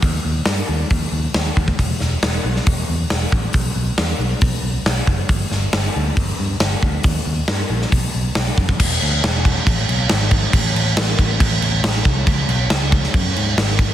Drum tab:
CC |----------------|----------------|----------------|----------------|
HH |o---o---o---o---|o---o---o---o---|o---o---o---o---|o---o---o---o---|
SD |----o-------o---|--o-o--o----o---|----o-------o---|--o-o-------o---|
BD |o-------o-----oo|o-------o-----o-|o-------o-----o-|o-------o-----o-|

CC |----------------|x-x---x-x-x-x-x-|x-x-x-x-x-x-x-x-|x-x-x-x-x-x-x-x-|
HH |o---o---o---o---|----------------|----------------|----------------|
SD |----o--o----o---|----o-------o---|----o-------oo--|----o--o----oo--|
BD |o-------o-----oo|o-----o-o-----o-|o-----o-o-----o-|o-----o-o-----o-|